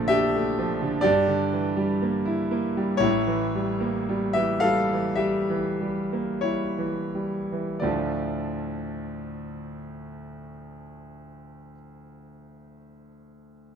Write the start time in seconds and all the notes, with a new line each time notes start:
Already playing: A#1 A#2 D3 F3 A3 F4 D5
0.08 D4 G4 E5
0.36 A3
0.59 F3
0.82 D3
1.01 G2 G4 D5
1.28 D3
1.53 E3
1.77 G3
2.02 A#3
2.25 E4
2.51 A#3
2.77 G3
2.97 A1 A2 E4 C#5
3.27 E3
3.55 G3
3.81 A#3
4.09 G3
4.33 E3 G4 E5
4.60 G3 A4 F5
4.93 E3
5.15 G3 G4 E5
5.50 E3
5.81 G3
6.13 A#3
6.41 G3 E4 C#5
6.78 E3
7.15 G3
7.52 E3
7.80 D2 A2 F3 A3 D4 F4 D5